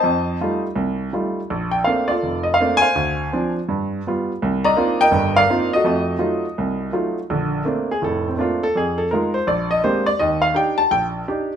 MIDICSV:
0, 0, Header, 1, 2, 480
1, 0, Start_track
1, 0, Key_signature, -2, "major"
1, 0, Tempo, 361446
1, 73, Time_signature, 4, 2, 24, 8
1, 15356, End_track
2, 0, Start_track
2, 0, Title_t, "Grand piano"
2, 0, Program_c, 0, 0
2, 0, Note_on_c, 0, 72, 55
2, 0, Note_on_c, 0, 75, 57
2, 0, Note_on_c, 0, 81, 88
2, 47, Note_on_c, 0, 41, 66
2, 473, Note_off_c, 0, 41, 0
2, 546, Note_on_c, 0, 55, 42
2, 547, Note_on_c, 0, 57, 44
2, 550, Note_on_c, 0, 65, 52
2, 553, Note_on_c, 0, 63, 43
2, 808, Note_off_c, 0, 81, 0
2, 816, Note_off_c, 0, 75, 0
2, 817, Note_off_c, 0, 72, 0
2, 880, Note_off_c, 0, 55, 0
2, 881, Note_off_c, 0, 57, 0
2, 882, Note_off_c, 0, 65, 0
2, 884, Note_off_c, 0, 63, 0
2, 1003, Note_on_c, 0, 36, 58
2, 1437, Note_off_c, 0, 36, 0
2, 1500, Note_on_c, 0, 55, 43
2, 1502, Note_on_c, 0, 63, 38
2, 1504, Note_on_c, 0, 57, 39
2, 1512, Note_on_c, 0, 65, 46
2, 1848, Note_off_c, 0, 55, 0
2, 1849, Note_off_c, 0, 63, 0
2, 1850, Note_off_c, 0, 57, 0
2, 1854, Note_off_c, 0, 65, 0
2, 1997, Note_on_c, 0, 34, 62
2, 2277, Note_on_c, 0, 79, 70
2, 2424, Note_off_c, 0, 34, 0
2, 2449, Note_on_c, 0, 77, 71
2, 2474, Note_off_c, 0, 79, 0
2, 2476, Note_on_c, 0, 57, 43
2, 2481, Note_on_c, 0, 58, 44
2, 2482, Note_on_c, 0, 60, 44
2, 2488, Note_on_c, 0, 62, 46
2, 2759, Note_on_c, 0, 74, 71
2, 2800, Note_off_c, 0, 77, 0
2, 2800, Note_on_c, 0, 65, 51
2, 2806, Note_on_c, 0, 69, 52
2, 2820, Note_off_c, 0, 57, 0
2, 2823, Note_off_c, 0, 58, 0
2, 2823, Note_off_c, 0, 60, 0
2, 2826, Note_off_c, 0, 62, 0
2, 2958, Note_on_c, 0, 29, 58
2, 3233, Note_on_c, 0, 75, 62
2, 3282, Note_off_c, 0, 74, 0
2, 3372, Note_on_c, 0, 77, 77
2, 3385, Note_off_c, 0, 29, 0
2, 3435, Note_off_c, 0, 75, 0
2, 3455, Note_on_c, 0, 58, 44
2, 3460, Note_on_c, 0, 57, 47
2, 3460, Note_on_c, 0, 60, 42
2, 3470, Note_on_c, 0, 62, 54
2, 3679, Note_on_c, 0, 80, 101
2, 3719, Note_off_c, 0, 65, 0
2, 3721, Note_off_c, 0, 69, 0
2, 3723, Note_off_c, 0, 77, 0
2, 3743, Note_on_c, 0, 77, 57
2, 3745, Note_on_c, 0, 72, 60
2, 3792, Note_off_c, 0, 58, 0
2, 3794, Note_off_c, 0, 57, 0
2, 3794, Note_off_c, 0, 60, 0
2, 3799, Note_off_c, 0, 62, 0
2, 3925, Note_on_c, 0, 38, 62
2, 4349, Note_off_c, 0, 38, 0
2, 4419, Note_on_c, 0, 60, 48
2, 4425, Note_on_c, 0, 53, 46
2, 4429, Note_on_c, 0, 62, 51
2, 4637, Note_off_c, 0, 80, 0
2, 4669, Note_off_c, 0, 77, 0
2, 4670, Note_off_c, 0, 72, 0
2, 4754, Note_off_c, 0, 60, 0
2, 4757, Note_off_c, 0, 53, 0
2, 4759, Note_off_c, 0, 62, 0
2, 4894, Note_on_c, 0, 43, 64
2, 5315, Note_off_c, 0, 43, 0
2, 5406, Note_on_c, 0, 55, 46
2, 5408, Note_on_c, 0, 59, 44
2, 5419, Note_on_c, 0, 65, 52
2, 5725, Note_off_c, 0, 55, 0
2, 5726, Note_off_c, 0, 59, 0
2, 5732, Note_off_c, 0, 65, 0
2, 5875, Note_on_c, 0, 36, 69
2, 6168, Note_on_c, 0, 82, 93
2, 6177, Note_on_c, 0, 74, 69
2, 6177, Note_on_c, 0, 75, 70
2, 6278, Note_off_c, 0, 36, 0
2, 6329, Note_on_c, 0, 58, 52
2, 6330, Note_on_c, 0, 62, 47
2, 6337, Note_on_c, 0, 60, 45
2, 6337, Note_on_c, 0, 63, 46
2, 6341, Note_on_c, 0, 65, 54
2, 6636, Note_off_c, 0, 75, 0
2, 6650, Note_on_c, 0, 70, 69
2, 6650, Note_on_c, 0, 79, 98
2, 6656, Note_on_c, 0, 75, 62
2, 6658, Note_off_c, 0, 82, 0
2, 6659, Note_off_c, 0, 58, 0
2, 6660, Note_off_c, 0, 62, 0
2, 6663, Note_off_c, 0, 60, 0
2, 6663, Note_off_c, 0, 63, 0
2, 6665, Note_off_c, 0, 65, 0
2, 6787, Note_on_c, 0, 31, 65
2, 6796, Note_on_c, 0, 43, 65
2, 7069, Note_off_c, 0, 74, 0
2, 7125, Note_on_c, 0, 77, 92
2, 7133, Note_off_c, 0, 70, 0
2, 7136, Note_off_c, 0, 79, 0
2, 7144, Note_on_c, 0, 74, 60
2, 7153, Note_on_c, 0, 70, 53
2, 7208, Note_off_c, 0, 31, 0
2, 7213, Note_off_c, 0, 43, 0
2, 7295, Note_on_c, 0, 58, 50
2, 7301, Note_on_c, 0, 60, 46
2, 7310, Note_on_c, 0, 65, 57
2, 7311, Note_on_c, 0, 62, 46
2, 7316, Note_on_c, 0, 63, 44
2, 7547, Note_off_c, 0, 75, 0
2, 7565, Note_off_c, 0, 77, 0
2, 7614, Note_on_c, 0, 75, 79
2, 7618, Note_off_c, 0, 58, 0
2, 7621, Note_off_c, 0, 60, 0
2, 7625, Note_off_c, 0, 65, 0
2, 7626, Note_off_c, 0, 62, 0
2, 7628, Note_off_c, 0, 63, 0
2, 7642, Note_on_c, 0, 69, 53
2, 7649, Note_on_c, 0, 66, 50
2, 7726, Note_off_c, 0, 74, 0
2, 7731, Note_off_c, 0, 70, 0
2, 7760, Note_on_c, 0, 41, 65
2, 7772, Note_on_c, 0, 57, 71
2, 8170, Note_off_c, 0, 41, 0
2, 8176, Note_off_c, 0, 57, 0
2, 8216, Note_on_c, 0, 63, 45
2, 8218, Note_on_c, 0, 54, 51
2, 8225, Note_on_c, 0, 57, 42
2, 8225, Note_on_c, 0, 65, 53
2, 8555, Note_off_c, 0, 63, 0
2, 8556, Note_off_c, 0, 54, 0
2, 8560, Note_off_c, 0, 57, 0
2, 8560, Note_off_c, 0, 65, 0
2, 8741, Note_on_c, 0, 36, 58
2, 9151, Note_off_c, 0, 36, 0
2, 9193, Note_on_c, 0, 54, 44
2, 9199, Note_on_c, 0, 57, 43
2, 9206, Note_on_c, 0, 65, 52
2, 9212, Note_on_c, 0, 63, 40
2, 9479, Note_off_c, 0, 75, 0
2, 9493, Note_off_c, 0, 69, 0
2, 9496, Note_off_c, 0, 66, 0
2, 9535, Note_off_c, 0, 54, 0
2, 9538, Note_off_c, 0, 57, 0
2, 9541, Note_off_c, 0, 65, 0
2, 9544, Note_off_c, 0, 63, 0
2, 9696, Note_on_c, 0, 34, 62
2, 9708, Note_on_c, 0, 50, 61
2, 10113, Note_off_c, 0, 34, 0
2, 10120, Note_off_c, 0, 50, 0
2, 10157, Note_on_c, 0, 58, 44
2, 10161, Note_on_c, 0, 57, 47
2, 10167, Note_on_c, 0, 60, 38
2, 10170, Note_on_c, 0, 62, 48
2, 10502, Note_off_c, 0, 58, 0
2, 10504, Note_off_c, 0, 57, 0
2, 10507, Note_off_c, 0, 60, 0
2, 10509, Note_off_c, 0, 62, 0
2, 10510, Note_on_c, 0, 68, 68
2, 10648, Note_on_c, 0, 29, 56
2, 10648, Note_on_c, 0, 45, 56
2, 10664, Note_off_c, 0, 68, 0
2, 10681, Note_on_c, 0, 69, 73
2, 10980, Note_off_c, 0, 69, 0
2, 10999, Note_on_c, 0, 60, 44
2, 11072, Note_off_c, 0, 29, 0
2, 11072, Note_off_c, 0, 45, 0
2, 11108, Note_off_c, 0, 60, 0
2, 11122, Note_on_c, 0, 57, 47
2, 11128, Note_on_c, 0, 60, 41
2, 11131, Note_on_c, 0, 58, 38
2, 11139, Note_on_c, 0, 62, 52
2, 11165, Note_on_c, 0, 65, 59
2, 11460, Note_off_c, 0, 65, 0
2, 11464, Note_off_c, 0, 57, 0
2, 11465, Note_on_c, 0, 69, 84
2, 11467, Note_off_c, 0, 60, 0
2, 11468, Note_off_c, 0, 58, 0
2, 11472, Note_off_c, 0, 62, 0
2, 11621, Note_off_c, 0, 69, 0
2, 11626, Note_on_c, 0, 41, 58
2, 11648, Note_on_c, 0, 68, 71
2, 11924, Note_on_c, 0, 69, 72
2, 11940, Note_off_c, 0, 68, 0
2, 12038, Note_off_c, 0, 41, 0
2, 12088, Note_off_c, 0, 69, 0
2, 12098, Note_on_c, 0, 70, 67
2, 12122, Note_on_c, 0, 56, 45
2, 12132, Note_on_c, 0, 63, 44
2, 12134, Note_on_c, 0, 65, 51
2, 12403, Note_off_c, 0, 70, 0
2, 12404, Note_on_c, 0, 72, 70
2, 12441, Note_off_c, 0, 56, 0
2, 12446, Note_off_c, 0, 63, 0
2, 12447, Note_off_c, 0, 65, 0
2, 12567, Note_off_c, 0, 72, 0
2, 12580, Note_on_c, 0, 34, 60
2, 12585, Note_on_c, 0, 74, 70
2, 12886, Note_off_c, 0, 74, 0
2, 12890, Note_on_c, 0, 75, 78
2, 12992, Note_off_c, 0, 34, 0
2, 13048, Note_off_c, 0, 75, 0
2, 13063, Note_on_c, 0, 60, 42
2, 13065, Note_on_c, 0, 58, 46
2, 13065, Note_on_c, 0, 72, 75
2, 13067, Note_on_c, 0, 67, 51
2, 13068, Note_on_c, 0, 62, 45
2, 13070, Note_on_c, 0, 56, 46
2, 13362, Note_off_c, 0, 72, 0
2, 13366, Note_on_c, 0, 74, 77
2, 13387, Note_off_c, 0, 60, 0
2, 13388, Note_off_c, 0, 58, 0
2, 13389, Note_off_c, 0, 67, 0
2, 13390, Note_off_c, 0, 56, 0
2, 13390, Note_off_c, 0, 62, 0
2, 13524, Note_off_c, 0, 74, 0
2, 13538, Note_on_c, 0, 75, 77
2, 13545, Note_on_c, 0, 39, 67
2, 13833, Note_on_c, 0, 77, 77
2, 13837, Note_off_c, 0, 75, 0
2, 13949, Note_off_c, 0, 39, 0
2, 13994, Note_off_c, 0, 77, 0
2, 14002, Note_on_c, 0, 63, 44
2, 14005, Note_on_c, 0, 62, 48
2, 14017, Note_on_c, 0, 67, 52
2, 14025, Note_on_c, 0, 79, 75
2, 14311, Note_on_c, 0, 81, 94
2, 14317, Note_off_c, 0, 79, 0
2, 14332, Note_off_c, 0, 63, 0
2, 14333, Note_off_c, 0, 62, 0
2, 14339, Note_off_c, 0, 67, 0
2, 14472, Note_off_c, 0, 81, 0
2, 14488, Note_on_c, 0, 34, 59
2, 14491, Note_on_c, 0, 79, 85
2, 14676, Note_off_c, 0, 79, 0
2, 14897, Note_off_c, 0, 34, 0
2, 14982, Note_on_c, 0, 62, 46
2, 14982, Note_on_c, 0, 67, 54
2, 14986, Note_on_c, 0, 63, 43
2, 15297, Note_off_c, 0, 62, 0
2, 15297, Note_off_c, 0, 67, 0
2, 15299, Note_off_c, 0, 63, 0
2, 15356, End_track
0, 0, End_of_file